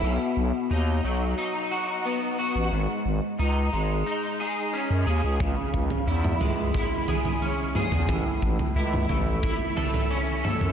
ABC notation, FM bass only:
X:1
M:4/4
L:1/16
Q:1/4=89
K:C#m
V:1 name="FM bass" clef=bass
B,,, z B,,, z D,,2 B,,,2 z6 z A,,, | G,,, z G,,, z C,,2 G,,,2 z4 z F,, D,, C,, | C,, z C,, z E,,2 C,,2 z6 z E,, | A,,, z A,,, z C,,2 A,,,2 z6 z F,, |]